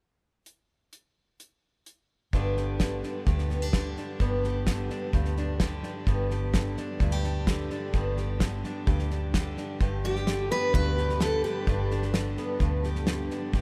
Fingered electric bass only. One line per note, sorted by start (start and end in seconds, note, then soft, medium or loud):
2.33 3.01 G1 medium
3.27 3.95 D2 medium
4.20 4.88 G1 medium
5.13 5.82 D2 medium
6.07 6.75 G1 medium
7.00 7.68 D2 medium
7.94 8.62 G1 medium
8.87 9.55 D2 medium
9.80 10.49 G1 medium
10.74 11.42 D2 medium
11.67 12.35 G1 medium
12.61 13.28 D2 medium
13.54 13.61 G1 medium